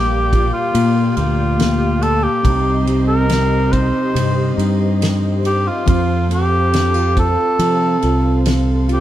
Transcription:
Already playing: A#1 A#2 G3 A#3 G4 D5 F5 G5
0.33 F4, kick, ride
0.53 F4
0.74 A#2, ride
1.16 D2 A#3 F4, ride
1.60 A#3, snare, ride
2.02 A#3 A4, ride
2.23 G4
2.43 C2 C3 G3 C4 D#4 C5 D#5 C6, kick, ride
2.85 G3, ride
3.08 A#4
3.29 C4, snare, ride
3.72 D#4 C5, kick, ride
4.14 G2 C3, ride
4.57 G2 D#4, ride
5.01 G4, snare, ride
5.43 C4 G4, ride
5.68 F4
5.85 F2 F3 C4 F4 A4 F5 C6, kick, ride
6.29 C4, ride
6.34 G4
6.73 D4, snare, ride
6.94 F4
7.17 F4 A4, kick, ride
7.59 C3 F3, ride
8.02 C2 F4, ride
8.46 A4, snare, ride
8.88 F4, ride
8.93 G4

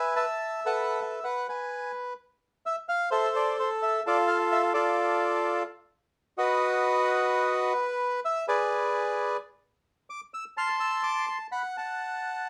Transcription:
Already playing: B4 E5 G#5
0.16 E5 A5
0.65 A4 B4 F#5
1.01 E5
1.24 B4 F#5
1.48 B4 G#5
2.66 E5
2.89 F5
3.11 A4 C5 E5
3.36 D5
3.60 C5
3.82 E5
4.07 F4 A4 D5
4.28 F5
4.52 E5
4.74 F4 A4 D5
6.38 F#4 B4 D#5
8.25 E5
8.48 G#4 B4 D5
10.10 D6
10.34 E6
10.57 A5 C6 F6
10.80 E6
11.03 D6
11.27 C6
11.52 F#5 B5
11.77 F#5 A5

